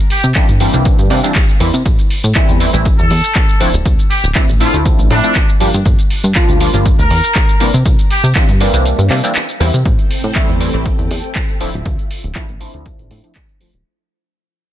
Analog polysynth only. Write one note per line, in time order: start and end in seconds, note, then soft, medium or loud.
0.35 0.44 E3 medium
0.35 0.44 G3 medium
0.35 0.44 A#3 medium
0.35 0.44 C4 medium
0.35 0.44 D4 loud
0.60 0.72 E3 medium
0.60 0.72 G3 medium
0.60 0.72 A#3 medium
0.60 0.72 C4 medium
0.60 0.72 D4 medium
0.73 1.08 E3 medium
0.73 1.08 G3 medium
0.73 1.08 A#3 medium
0.73 1.08 C4 medium
0.73 1.08 D4 medium
1.10 1.19 E3 medium
1.10 1.19 G3 medium
1.10 1.19 A#3 medium
1.10 1.19 C4 medium
1.10 1.19 D4 medium
1.23 1.31 E3 medium
1.23 1.31 G3 medium
1.23 1.31 A#3 medium
1.23 1.31 C4 medium
1.23 1.31 D4 loud
1.60 1.69 E3 medium
1.60 1.69 G3 medium
1.60 1.69 A#3 medium
1.60 1.69 C4 medium
1.60 1.69 E4 loud
2.35 2.58 E3 loud
2.35 2.58 G3 medium
2.35 2.58 A3 medium
2.35 2.58 C4 medium
2.35 2.58 E4 loud
2.60 2.69 E3 medium
2.60 2.69 G3 medium
2.60 2.69 A3 medium
2.60 2.69 C4 medium
2.60 2.69 E4 medium
2.73 2.85 E3 medium
2.73 2.85 G3 medium
2.73 2.85 A3 medium
2.73 2.86 C4 medium
2.73 2.86 E4 medium
3.60 3.69 F3 medium
3.60 3.69 A3 medium
3.60 3.69 C4 medium
3.60 3.69 D4 medium
3.60 3.69 E4 loud
4.35 4.43 F3 medium
4.35 4.44 A3 medium
4.35 4.44 C4 medium
4.35 4.44 D4 medium
4.35 4.44 E4 loud
4.60 4.72 F3 medium
4.60 4.72 A3 medium
4.60 4.72 C4 medium
4.60 4.72 D4 medium
4.60 4.72 E4 medium
4.73 5.08 F3 medium
4.73 5.08 A3 medium
4.73 5.08 C4 medium
4.73 5.08 D4 medium
4.73 5.08 E4 medium
5.10 5.19 F3 medium
5.10 5.19 A3 medium
5.10 5.19 C4 medium
5.10 5.19 D4 medium
5.10 5.19 E4 loud
5.23 5.31 F3 medium
5.23 5.31 A3 medium
5.23 5.31 C4 medium
5.23 5.31 D4 medium
5.23 5.31 E4 medium
5.60 5.69 F3 medium
5.60 5.69 G3 medium
5.60 5.69 A#3 medium
5.60 5.69 D4 medium
5.60 5.69 G4 loud
6.35 6.57 F3 loud
6.35 6.58 G3 medium
6.35 6.58 A#3 medium
6.35 6.58 D4 medium
6.35 6.58 F4 loud
6.60 6.69 F3 medium
6.60 6.69 G3 medium
6.60 6.69 A#3 medium
6.60 6.69 D4 medium
6.60 6.69 F4 medium
6.73 6.85 F3 medium
6.73 6.86 G3 medium
6.73 6.86 A#3 medium
6.73 6.86 D4 medium
6.73 6.86 F4 medium
7.60 7.69 E3 medium
7.60 7.69 G3 medium
7.60 7.69 A#3 medium
7.60 7.69 C4 medium
7.60 7.69 D4 medium
8.35 8.44 E3 medium
8.35 8.44 G3 medium
8.35 8.44 A#3 medium
8.35 8.44 C4 medium
8.35 8.44 D4 loud
8.60 8.72 E3 medium
8.60 8.72 G3 medium
8.60 8.72 A#3 medium
8.60 8.72 C4 medium
8.60 8.72 D4 medium
8.73 9.08 E3 medium
8.73 9.08 G3 medium
8.73 9.08 A#3 medium
8.73 9.08 C4 medium
8.73 9.08 D4 medium
9.10 9.19 E3 medium
9.10 9.19 G3 medium
9.10 9.19 A#3 medium
9.10 9.19 C4 medium
9.10 9.19 D4 loud
9.23 9.31 E3 medium
9.23 9.31 G3 medium
9.23 9.31 A#3 medium
9.23 9.31 C4 medium
9.23 9.31 D4 loud
9.60 9.69 E3 loud
9.60 9.69 G3 medium
9.60 9.69 A#3 medium
9.60 9.69 C4 medium
9.60 9.69 E4 loud
10.35 10.58 E3 medium
10.35 10.58 G3 medium
10.35 10.58 A3 medium
10.35 10.58 C4 medium
10.35 10.58 E4 loud
10.60 10.69 E3 medium
10.60 10.69 G3 medium
10.60 10.69 A3 medium
10.60 10.69 C4 medium
10.60 10.69 E4 medium
10.73 10.85 E3 medium
10.73 10.85 G3 medium
10.73 10.86 A3 medium
10.73 10.86 C4 medium
10.73 10.86 E4 medium
11.60 11.69 F3 medium
11.60 11.69 A3 medium
11.60 11.69 C4 medium
11.60 11.69 D4 medium
11.60 11.69 E4 loud
12.35 12.44 F3 medium
12.35 12.44 A3 medium
12.35 12.44 C4 medium
12.35 12.44 D4 medium
12.35 12.44 E4 medium
12.60 12.72 F3 medium
12.60 12.72 A3 medium
12.60 12.72 C4 medium
12.60 12.72 D4 medium
12.60 12.72 E4 medium
12.74 13.08 F3 medium
12.74 13.08 A3 medium
12.74 13.08 C4 medium
12.74 13.08 D4 medium
12.74 13.08 E4 medium
13.10 13.19 F3 medium
13.10 13.19 A3 medium
13.10 13.19 C4 medium
13.10 13.19 D4 medium
13.10 13.19 E4 medium
13.23 13.31 F3 medium
13.23 13.31 A3 medium
13.23 13.31 C4 medium
13.23 13.31 D4 medium
13.23 13.31 E4 medium
13.60 13.69 F3 medium
13.60 13.69 A3 medium
13.60 13.69 C4 medium
13.60 13.69 D4 medium
13.60 13.69 F4 medium